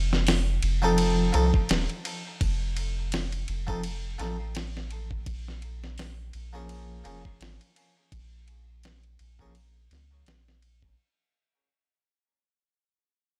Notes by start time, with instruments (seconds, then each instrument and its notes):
Already playing: sub bass F1
0.13 snare
0.27 snare, open hi-hat
0.63 sub bass F1, ride
0.82 harpsichord F3 C4 D#4 A4
0.98 ride
1.33 sub bass C2, harpsichord F3 C4 D#4 A4, ride
1.54 kick
1.69 sub bass D#1, snare, ride
1.89 ride
2.05 ride
2.41 sub bass F1, kick, ride
2.77 ride
3.12 snare, ride
3.32 ride
3.48 sub bass F1, ride
3.67 harpsichord F3 C4 D#4 A4, kick
3.83 ride
4.18 sub bass A1, harpsichord F3 C4 D#4 A4, snare, ride
4.55 snare, ride
4.77 snare
4.91 ride
5.11 kick
5.26 sub bass A#1, kick, ride
5.48 snare
5.62 ride
5.84 snare
5.98 snare, open hi-hat
6.33 sub bass A#1, ride
6.53 harpsichord F3 A#3 C#4 G#4
6.69 ride
7.04 sub bass F1, harpsichord F3 A#3 C#4 G#4, ride
7.25 kick
7.41 sub bass G#1, snare, ride
7.61 ride
7.76 ride
8.12 sub bass A#1, kick, ride
8.48 ride
8.83 snare, ride
9.03 ride
9.19 sub bass A#1, ride
9.39 harpsichord F3 A#3 C#4 G#4, kick
9.55 ride
9.91 sub bass C#2, snare, ride
10.26 snare, ride
10.48 snare
10.62 ride
10.82 kick